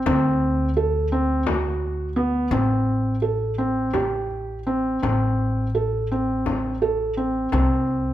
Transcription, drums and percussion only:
0.06 frame drum medium
0.76 frame drum soft
1.47 frame drum medium
2.51 frame drum soft
3.94 frame drum soft
4.30 frame drum soft
5.03 frame drum soft
5.39 frame drum soft
6.10 frame drum soft
6.46 frame drum soft
6.82 frame drum soft
7.52 frame drum soft
7.87 frame drum soft

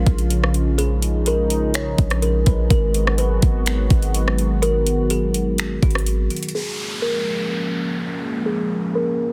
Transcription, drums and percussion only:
0.06 kick loud
0.06 closed hi-hat medium
0.18 closed hi-hat medium
0.30 closed hi-hat medium
0.44 cross-stick loud
0.54 closed hi-hat medium
0.79 closed hi-hat medium
1.02 closed hi-hat medium
1.26 closed hi-hat medium
1.50 closed hi-hat medium
1.74 finger snap loud
1.74 closed hi-hat medium
1.98 kick loud
1.98 closed hi-hat medium
2.10 cross-stick loud
2.10 closed hi-hat medium
2.22 closed hi-hat medium
2.46 kick loud
2.46 closed hi-hat medium
2.70 kick loud
2.70 closed hi-hat medium
2.94 closed hi-hat medium
3.07 cross-stick loud
3.18 closed hi-hat medium
3.42 kick loud
3.42 closed hi-hat medium
3.66 finger snap loud
3.66 closed hi-hat medium
3.90 kick loud
3.90 closed hi-hat medium
4.02 closed hi-hat medium
4.14 closed hi-hat medium
4.28 cross-stick loud
4.38 closed hi-hat medium
4.63 closed hi-hat medium
4.87 closed hi-hat medium
5.10 closed hi-hat medium
5.34 closed hi-hat medium
5.58 finger snap loud
5.58 closed hi-hat medium
5.83 kick loud
5.83 closed hi-hat soft
5.91 closed hi-hat medium
5.95 cross-stick loud
5.95 closed hi-hat medium
6.06 closed hi-hat medium
6.30 closed hi-hat soft
6.37 closed hi-hat medium
6.43 closed hi-hat medium
6.49 closed hi-hat medium

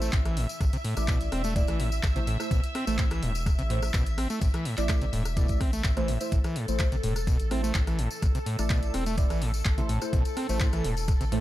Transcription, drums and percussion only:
0.02 tambourine medium
0.13 kick loud
0.13 clap loud
0.13 closed hi-hat medium
0.13 tambourine medium
0.25 cross-stick medium
0.25 closed hi-hat soft
0.25 tambourine soft
0.37 open hi-hat loud
0.49 tambourine medium
0.61 kick loud
0.61 cross-stick medium
0.61 closed hi-hat medium
0.61 tambourine medium
0.73 closed hi-hat medium
0.73 tambourine soft
0.85 open hi-hat loud
0.97 cross-stick medium
0.97 closed hi-hat soft
0.97 tambourine medium
1.08 kick loud
1.08 clap loud
1.08 closed hi-hat medium
1.08 tambourine medium
1.21 closed hi-hat medium
1.21 tambourine soft
1.32 cross-stick medium
1.32 open hi-hat medium
1.44 closed hi-hat soft
1.44 tambourine medium
1.56 kick loud
1.56 closed hi-hat medium
1.56 tambourine medium
1.67 cross-stick medium
1.67 closed hi-hat medium
1.67 tambourine soft
1.80 open hi-hat loud
1.92 tambourine medium
2.03 kick loud
2.03 cross-stick medium
2.03 clap loud
2.03 closed hi-hat medium
2.03 tambourine medium
2.16 closed hi-hat medium
2.16 tambourine soft
2.27 open hi-hat medium
2.40 cross-stick medium
2.40 tambourine medium
2.51 kick loud
2.51 closed hi-hat medium
2.51 tambourine medium
2.64 closed hi-hat medium
2.64 tambourine soft
2.75 cross-stick medium
2.75 open hi-hat loud
2.87 closed hi-hat soft
2.87 tambourine medium
2.98 kick loud
2.98 clap loud
2.98 closed hi-hat medium
2.98 tambourine medium
3.10 cross-stick medium
3.10 closed hi-hat medium
3.10 tambourine soft
3.23 open hi-hat medium
3.35 closed hi-hat soft
3.35 tambourine medium
3.46 kick loud
3.46 cross-stick medium
3.46 closed hi-hat medium
3.46 tambourine medium
3.58 closed hi-hat medium
3.58 tambourine soft
3.70 open hi-hat loud
3.82 cross-stick medium
3.82 tambourine medium
3.94 kick loud
3.94 clap loud
3.94 closed hi-hat medium
3.94 tambourine medium
4.06 closed hi-hat medium
4.06 tambourine soft
4.18 cross-stick medium
4.18 open hi-hat medium
4.30 tambourine medium
4.41 kick loud
4.41 closed hi-hat medium
4.41 tambourine medium
4.54 cross-stick medium
4.54 closed hi-hat medium
4.54 tambourine soft
4.65 open hi-hat loud
4.77 clap soft
4.77 closed hi-hat soft
4.77 tambourine medium
4.89 kick loud
4.89 cross-stick medium
4.89 clap loud
4.89 closed hi-hat medium
4.89 tambourine medium
5.01 closed hi-hat medium
5.01 tambourine soft
5.13 open hi-hat medium
5.25 cross-stick medium
5.25 closed hi-hat soft
5.25 tambourine medium
5.37 kick loud
5.37 closed hi-hat medium
5.37 tambourine medium
5.48 kick medium
5.48 closed hi-hat medium
5.48 tambourine soft
5.61 kick medium
5.61 cross-stick medium
5.61 open hi-hat loud
5.73 closed hi-hat soft
5.73 tambourine medium
5.84 kick loud
5.84 clap loud
5.84 closed hi-hat medium
5.84 tambourine medium
5.96 cross-stick medium
5.96 closed hi-hat medium
5.96 tambourine soft
6.08 open hi-hat medium
6.21 closed hi-hat soft
6.21 tambourine medium
6.32 kick loud
6.32 closed hi-hat medium
6.32 tambourine medium
6.44 cross-stick medium
6.44 closed hi-hat medium
6.44 tambourine soft
6.56 open hi-hat loud
6.68 closed hi-hat soft
6.68 tambourine medium
6.79 kick loud
6.79 cross-stick medium
6.79 clap loud
6.79 closed hi-hat medium
6.79 tambourine medium
6.92 closed hi-hat medium
6.92 tambourine soft
7.03 open hi-hat medium
7.16 cross-stick medium
7.16 closed hi-hat soft
7.16 tambourine medium
7.27 kick loud
7.27 closed hi-hat medium
7.27 tambourine medium
7.39 closed hi-hat medium
7.39 tambourine soft
7.51 cross-stick medium
7.51 open hi-hat loud
7.64 tambourine medium
7.74 kick loud
7.74 clap loud
7.74 closed hi-hat medium
7.74 tambourine medium
7.87 cross-stick medium
7.87 closed hi-hat medium
7.87 tambourine soft
7.99 open hi-hat loud
8.11 tambourine medium
8.22 kick loud
8.22 cross-stick medium
8.22 closed hi-hat medium
8.22 tambourine medium
8.35 closed hi-hat medium
8.35 tambourine soft
8.46 open hi-hat loud
8.59 cross-stick medium
8.59 closed hi-hat soft
8.59 tambourine medium
8.70 kick loud
8.70 clap loud
8.70 closed hi-hat medium
8.70 tambourine medium
8.83 closed hi-hat medium
8.83 tambourine soft
8.94 cross-stick medium
8.94 open hi-hat loud
9.06 closed hi-hat soft
9.06 tambourine medium
9.18 kick loud
9.18 closed hi-hat medium
9.18 tambourine medium
9.30 cross-stick medium
9.30 closed hi-hat medium
9.30 tambourine soft
9.42 open hi-hat loud
9.54 tambourine medium
9.65 kick loud
9.65 cross-stick medium
9.65 clap loud
9.65 closed hi-hat medium
9.65 tambourine medium
9.78 closed hi-hat medium
9.78 tambourine soft
9.89 open hi-hat loud
10.02 cross-stick medium
10.02 tambourine medium
10.13 kick loud
10.13 closed hi-hat medium
10.13 tambourine medium
10.25 closed hi-hat medium
10.25 tambourine soft
10.37 cross-stick medium
10.37 open hi-hat loud
10.49 closed hi-hat soft
10.49 tambourine medium
10.60 kick loud
10.60 clap loud
10.60 closed hi-hat medium
10.60 tambourine medium
10.73 cross-stick medium
10.73 closed hi-hat medium
10.73 tambourine soft
10.84 open hi-hat loud
10.97 closed hi-hat soft
10.97 tambourine medium
11.08 kick loud
11.08 cross-stick medium
11.08 closed hi-hat medium
11.08 tambourine medium
11.21 closed hi-hat medium
11.21 tambourine soft
11.32 open hi-hat loud

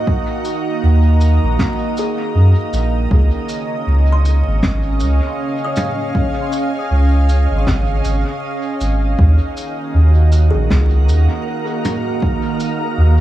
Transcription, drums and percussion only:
0.07 kick loud
0.45 shaker medium
1.21 shaker medium
1.59 kick loud
1.59 snare loud
1.97 shaker medium
2.73 shaker medium
3.11 kick loud
3.49 shaker medium
4.25 shaker medium
4.63 kick loud
4.63 snare loud
5.00 shaker medium
5.76 mid tom medium
5.76 shaker medium
6.15 kick loud
6.53 shaker medium
7.29 shaker medium
7.67 kick loud
7.67 snare medium
8.05 shaker medium
8.81 shaker medium
9.19 kick loud
9.57 shaker medium
10.32 shaker medium
10.71 kick loud
10.71 snare loud
11.09 shaker medium
11.85 mid tom medium
11.85 shaker medium
12.22 kick loud
12.60 shaker medium

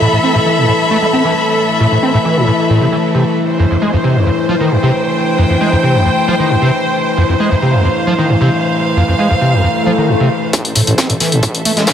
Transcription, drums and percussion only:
10.53 kick loud
10.53 closed hi-hat medium
10.65 closed hi-hat medium
10.75 closed hi-hat medium
10.75 open hi-hat loud
10.87 closed hi-hat soft
10.87 closed hi-hat medium
10.98 kick loud
10.98 snare loud
10.98 closed hi-hat loud
10.98 closed hi-hat medium
11.10 closed hi-hat medium
11.20 snare soft
11.20 closed hi-hat medium
11.20 open hi-hat loud
11.32 closed hi-hat medium
11.43 kick loud
11.43 closed hi-hat medium
11.43 closed hi-hat loud
11.55 closed hi-hat medium
11.65 closed hi-hat medium
11.65 open hi-hat loud
11.77 snare soft
11.77 closed hi-hat medium
11.87 kick loud
11.87 snare loud
11.87 closed hi-hat medium

